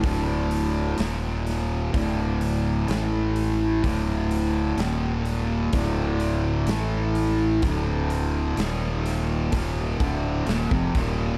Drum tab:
HH |o-o-o-o-o-o-o-o-|o-o-o-o-o-o-o-o-|o-o-o-o-o-o-o-o-|
SD |----o-o-----o---|----o-------o---|----o-o-----o---|
BD |o-------o-------|o-------o-------|o-------o-o--oo-|